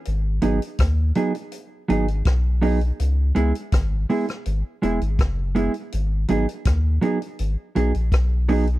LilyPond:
<<
  \new Staff \with { instrumentName = "Clean electric guitar" } { \time 4/4 \key gis \minor \tempo 4 = 82 r8 <fis b dis' gis'>8 r8 <fis b dis' gis'>8 r8 <fis b dis' gis'>8 r8 <fis b dis' gis'>8 | r8 <gis b e' gis'>8 r8 <gis b e' gis'>8 r8 <gis b e' gis'>8 r8 <gis b e' gis'>8 | r8 <fis b dis' gis'>8 r8 <fis b dis' gis'>8 r8 <fis b dis' gis'>8 r8 <fis b dis' gis'>8 | }
  \new Staff \with { instrumentName = "Sub bass" } { \clef bass \time 4/4 \key gis \minor gis,,8 gis,,16 r16 dis,8 r4 gis,,8 b,,4 | cis,8 cis,16 r16 gis,,8 r8 gis,,16 r16 e,,16 gis,,16 fis,,8. r16 | gis,,8 gis,,16 r16 dis,8 r8 gis,,16 r16 b,,16 ais,,16 b,,4 | }
  \new DrumStaff \with { instrumentName = "Drums" } \drummode { \time 4/4 hh8 hh16 hh16 <hh bd ss>8 hh16 hh16 hh8 hh16 hh16 <hh bd ss>8 hho16 hh16 | hh8 hh16 hh16 <hh bd ss>8 hho16 <hh ss>16 hh8 hh16 hh16 <hh bd ss>8 hh16 hh16 | hh8 hh16 hh16 <hh bd ss>8 hh16 hh16 hh8 hh16 hh16 <hh bd ss>8 hho16 hh16 | }
>>